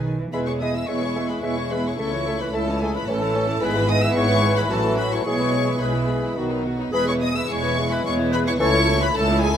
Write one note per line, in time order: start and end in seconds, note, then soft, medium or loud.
0.00 0.26 B1 medium
0.00 0.19 D#3 medium
0.19 0.33 E3 medium
0.32 0.82 E1 soft
0.32 0.82 E2 medium
0.32 1.95 G#3 medium
0.32 0.46 G#3 soft
0.32 0.46 B3 soft
0.32 3.57 E4 medium
0.32 0.46 E4 soft
0.32 0.46 G#4 soft
0.32 0.46 B4 soft
0.32 0.46 B4 medium
0.32 0.45 E5 soft
0.32 0.38 B5 medium
0.47 0.61 G#3 soft
0.47 0.61 E4 soft
0.47 0.61 G#4 soft
0.47 0.60 G#4 soft
0.47 0.61 C#5 medium
0.47 0.52 C#6 medium
0.60 0.74 G#3 soft
0.60 0.74 B3 soft
0.60 0.74 E4 soft
0.60 0.73 G#4 soft
0.60 0.75 B4 soft
0.60 0.75 D#5 medium
0.60 0.74 E5 soft
0.60 0.75 D#6 medium
0.74 0.88 G#3 soft
0.74 0.89 E4 soft
0.74 0.88 G#4 soft
0.74 0.87 G#4 soft
0.74 0.88 E5 medium
0.74 0.89 E6 medium
0.87 1.38 E1 soft
0.87 1.37 E2 medium
0.87 1.01 G#3 soft
0.87 1.01 B3 soft
0.87 1.01 E4 soft
0.87 1.01 G#4 soft
0.87 1.01 B4 soft
0.87 1.30 C#5 medium
0.87 1.01 E5 soft
0.87 1.30 C#6 medium
1.01 1.16 G#3 soft
1.01 1.17 E4 soft
1.01 1.16 G#4 soft
1.16 1.29 G#3 soft
1.16 1.30 B3 soft
1.16 1.30 E4 soft
1.16 1.29 G#4 soft
1.16 1.30 B4 soft
1.16 1.28 E5 soft
1.30 1.44 G#3 soft
1.30 1.44 E4 soft
1.30 1.44 G#4 soft
1.30 1.44 B4 soft
1.30 1.44 B5 medium
1.43 1.93 E1 medium
1.43 1.93 E2 medium
1.43 1.56 G#3 soft
1.43 1.57 B3 soft
1.43 1.57 E4 soft
1.43 1.57 G#4 soft
1.43 1.58 B4 soft
1.43 1.72 C#5 medium
1.43 1.56 E5 soft
1.43 1.72 C#6 medium
1.58 1.72 G#3 soft
1.58 1.72 E4 soft
1.58 1.72 G#4 soft
1.70 1.84 G#3 soft
1.70 1.85 B3 soft
1.70 1.85 E4 soft
1.70 1.85 G#4 soft
1.70 1.86 B4 medium
1.70 1.86 B4 soft
1.70 1.83 E5 soft
1.70 1.86 B5 medium
1.85 1.99 G#3 soft
1.85 2.00 E4 soft
1.85 1.99 G#4 soft
1.85 2.00 G#4 soft
1.85 1.98 C#5 medium
1.85 1.99 C#6 medium
1.98 2.48 C#2 medium
1.98 2.11 A3 medium
1.98 2.11 A3 soft
1.98 3.06 A3 medium
1.98 2.12 C#4 soft
1.98 2.12 E4 soft
1.98 2.13 A4 soft
1.98 2.40 C#5 medium
1.98 2.11 E5 soft
1.98 2.40 C#6 medium
2.12 2.27 E3 soft
2.12 2.27 C#4 soft
2.12 2.27 E4 soft
2.12 2.27 C#5 soft
2.26 2.40 A3 medium
2.26 2.39 A3 soft
2.26 2.41 C#4 soft
2.26 2.40 E4 soft
2.26 2.41 A4 soft
2.26 2.39 E5 soft
2.40 2.54 E3 soft
2.40 2.54 C#4 medium
2.40 2.55 E4 soft
2.40 2.55 B4 medium
2.40 2.55 C#5 soft
2.40 2.54 B5 medium
2.54 3.01 C#2 medium
2.54 3.02 C#2 medium
2.54 2.66 A3 medium
2.54 2.67 A3 medium
2.54 2.67 C#4 medium
2.54 2.67 E4 medium
2.54 2.81 A4 medium
2.54 2.67 A4 medium
2.54 2.66 E5 medium
2.54 2.82 A5 medium
2.67 2.81 E3 medium
2.67 2.81 C#4 medium
2.67 2.81 E4 soft
2.67 2.81 C#5 soft
2.81 2.94 A3 medium
2.81 2.94 A3 soft
2.81 2.95 C#4 medium
2.81 2.94 E4 soft
2.81 2.95 G#4 medium
2.81 2.95 A4 soft
2.81 2.93 E5 soft
2.81 2.95 G#5 medium
2.93 3.08 E3 medium
2.93 3.06 C#4 soft
2.93 3.08 E4 soft
2.93 3.09 B4 medium
2.93 3.08 C#5 soft
2.93 3.08 B5 medium
3.07 3.55 A1 medium
3.07 3.55 A2 medium
3.07 3.21 E3 medium
3.07 3.19 A3 medium
3.07 3.20 C#4 medium
3.07 3.62 C#4 medium
3.07 3.20 A4 medium
3.07 3.61 A4 medium
3.07 3.20 C#5 medium
3.07 3.62 A5 medium
3.20 3.34 E3 medium
3.20 3.33 A3 medium
3.20 3.35 E4 medium
3.20 3.35 C#5 medium
3.33 3.47 E3 medium
3.33 3.47 A3 medium
3.33 3.48 C#4 medium
3.33 3.48 A4 medium
3.33 3.47 C#5 medium
3.47 3.62 E3 medium
3.47 3.62 A3 medium
3.47 3.60 E4 medium
3.47 3.61 C#5 medium
3.60 4.09 G#1 medium
3.60 4.09 G#2 medium
3.60 4.67 E3 medium
3.60 3.73 G#3 medium
3.60 4.66 B3 medium
3.60 3.74 B3 medium
3.60 4.66 E4 medium
3.60 3.73 E4 medium
3.60 3.73 G#4 medium
3.60 4.71 B4 medium
3.60 3.90 B4 medium
3.60 3.89 B5 medium
3.74 3.88 E3 medium
3.74 3.87 G#3 medium
3.74 3.87 E4 medium
3.74 3.87 G#4 medium
3.88 4.00 G#3 medium
3.88 4.02 B3 medium
3.88 4.01 E4 medium
3.88 4.01 G#4 medium
3.88 4.03 D#5 medium
3.88 4.02 D#6 loud
4.01 4.16 E3 medium
4.01 4.13 G#3 medium
4.01 4.13 E4 medium
4.01 4.14 G#4 medium
4.01 4.17 E5 medium
4.01 4.16 E6 medium
4.14 4.64 G#1 medium
4.14 4.64 G#2 medium
4.14 4.27 G#3 medium
4.14 4.28 B3 medium
4.14 4.27 E4 medium
4.14 4.28 G#4 medium
4.14 4.58 C#5 medium
4.14 4.56 C#6 loud
4.28 4.43 E3 medium
4.28 4.40 G#3 medium
4.28 4.41 E4 medium
4.28 4.41 G#4 medium
4.41 4.54 G#3 medium
4.41 4.56 B3 medium
4.41 4.55 E4 medium
4.41 4.55 G#4 medium
4.55 4.70 E3 medium
4.55 4.70 G#3 medium
4.55 4.71 E4 medium
4.55 4.70 G#4 medium
4.55 4.71 B4 medium
4.55 4.71 B5 medium
4.69 5.20 A1 medium
4.69 5.19 A2 medium
4.69 5.25 E3 medium
4.69 4.83 F#3 medium
4.69 5.26 F#3 medium
4.69 4.83 C#4 medium
4.69 5.25 E4 medium
4.69 5.26 F#4 medium
4.69 4.83 F#4 medium
4.69 4.99 A4 medium
4.69 4.98 A5 medium
4.83 4.98 E3 medium
4.83 4.98 A3 medium
4.83 4.98 E4 medium
4.83 4.98 A4 medium
4.97 5.12 F#3 medium
4.97 5.12 C#4 medium
4.97 5.12 F#4 medium
4.97 5.03 B4 medium
4.97 5.12 B5 medium
5.11 5.26 E3 medium
5.11 5.26 A3 medium
5.11 5.26 E4 medium
5.11 5.26 A4 medium
5.11 5.24 C#5 medium
5.11 5.24 C#6 medium
5.25 5.75 B1 medium
5.25 5.75 B2 medium
5.25 5.81 E3 medium
5.25 5.38 G#3 medium
5.25 5.80 G#3 medium
5.25 5.39 B3 medium
5.25 5.80 E4 medium
5.25 5.39 G#4 medium
5.25 5.81 G#4 medium
5.25 5.80 C#5 medium
5.25 5.80 C#6 medium
5.39 5.54 E3 soft
5.39 5.51 G#3 soft
5.39 5.54 E4 soft
5.39 5.54 B4 soft
5.53 5.66 G#3 soft
5.53 5.67 B3 medium
5.53 5.68 G#4 medium
5.67 5.81 E3 soft
5.67 5.79 G#3 soft
5.67 5.81 E4 soft
5.67 5.82 B4 soft
5.79 6.31 B1 medium
5.79 6.31 B2 medium
5.79 6.38 E3 medium
5.79 5.93 G#3 soft
5.79 6.36 G#3 medium
5.79 5.94 B3 medium
5.79 6.36 E4 medium
5.79 5.94 G#4 medium
5.79 6.38 G#4 medium
5.79 6.37 B4 medium
5.79 6.37 B5 medium
5.94 6.09 E3 soft
5.94 6.07 G#3 soft
5.94 6.09 E4 soft
5.94 6.09 B4 soft
6.08 6.21 G#3 soft
6.08 6.23 B3 soft
6.08 6.23 G#4 soft
6.22 6.37 E3 soft
6.22 6.37 G#3 soft
6.22 6.38 E4 soft
6.22 6.37 B4 soft
6.36 6.87 B1 medium
6.36 6.87 B2 medium
6.36 6.50 D#3 soft
6.36 6.65 D#3 medium
6.36 6.66 F#3 medium
6.36 6.50 B3 soft
6.36 6.66 D#4 medium
6.36 6.51 F#4 soft
6.36 6.66 F#4 medium
6.50 6.65 F#3 soft
6.50 6.65 D#4 soft
6.50 6.66 D#4 soft
6.50 6.66 B4 soft
6.64 6.79 D#3 soft
6.64 6.79 B3 soft
6.64 6.80 F#4 medium
6.78 6.93 F#3 soft
6.78 6.93 D#4 soft
6.78 6.94 D#4 soft
6.78 6.94 B4 soft
6.92 7.43 E1 medium
6.92 7.43 E2 medium
6.92 7.13 E3 medium
6.92 8.56 G#3 medium
6.92 7.05 G#3 medium
6.92 7.06 B3 medium
6.92 8.56 E4 medium
6.92 7.12 G#4 medium
6.92 7.07 G#4 medium
6.92 7.07 B4 medium
6.92 7.07 B5 medium
7.06 7.21 E3 medium
7.06 7.20 G#3 medium
7.06 7.22 E4 medium
7.06 7.22 B4 medium
7.06 7.14 C#5 medium
7.06 7.13 C#6 medium
7.21 7.33 G#3 medium
7.21 7.35 B3 medium
7.21 7.36 G#4 medium
7.21 7.29 D#5 medium
7.21 7.36 D#6 medium
7.34 7.49 E3 medium
7.34 7.47 G#3 medium
7.34 7.50 E4 medium
7.34 7.50 B4 medium
7.34 7.43 E5 medium
7.34 7.50 E6 medium
7.49 7.99 E1 medium
7.49 7.99 E2 medium
7.49 7.61 G#3 medium
7.49 7.62 B3 medium
7.49 7.63 G#4 medium
7.49 7.91 C#5 medium
7.49 7.91 C#6 medium
7.63 7.77 E3 medium
7.63 7.76 G#3 medium
7.63 7.78 E4 medium
7.63 7.78 B4 medium
7.77 7.89 G#3 medium
7.77 7.91 B3 medium
7.77 7.92 G#4 medium
7.90 8.05 E3 medium
7.90 8.03 G#3 medium
7.90 8.05 E4 medium
7.90 8.06 B4 medium
7.90 8.05 B5 medium
8.04 8.55 E1 medium
8.04 8.54 E2 medium
8.04 8.17 G#3 medium
8.04 8.18 B3 medium
8.04 8.19 G#4 medium
8.04 8.33 C#5 medium
8.04 8.13 C#6 loud
8.18 8.33 E3 medium
8.18 8.31 G#3 medium
8.18 8.33 E4 medium
8.18 8.33 B4 medium
8.32 8.45 G#3 medium
8.32 8.47 B3 medium
8.32 8.47 G#4 medium
8.32 8.47 B4 medium
8.32 8.38 B5 medium
8.46 8.61 E3 medium
8.46 8.60 G#3 medium
8.46 8.61 E4 medium
8.46 8.61 B4 medium
8.46 8.52 C#5 medium
8.46 8.53 C#6 medium
8.59 9.09 C#2 medium
8.59 8.80 E3 medium
8.59 8.73 A3 medium
8.59 9.14 A3 medium
8.59 8.73 C#4 medium
8.59 9.14 E4 medium
8.59 8.73 A4 medium
8.59 8.80 A4 medium
8.59 9.01 C#5 loud
8.59 9.01 C#6 loud
8.73 8.88 E3 medium
8.73 8.88 C#4 medium
8.73 8.88 E4 medium
8.73 8.88 C#5 medium
8.86 9.02 A3 medium
8.86 9.01 C#4 medium
8.86 9.01 A4 medium
9.00 9.15 E3 medium
9.00 9.15 C#4 medium
9.00 9.15 E4 medium
9.00 9.07 B4 medium
9.00 9.15 C#5 medium
9.00 9.16 B5 loud
9.14 9.57 C#2 medium
9.14 9.28 A3 medium
9.14 9.57 A3 medium
9.14 9.27 C#4 medium
9.14 9.57 E4 medium
9.14 9.27 A4 medium
9.14 9.43 A4 medium
9.14 9.43 A5 loud
9.28 9.43 E3 medium
9.28 9.43 C#4 medium
9.28 9.42 E4 medium
9.28 9.43 C#5 medium
9.42 9.56 A3 medium
9.42 9.56 C#4 medium
9.42 9.49 G#4 medium
9.42 9.56 A4 medium
9.42 9.57 G#5 loud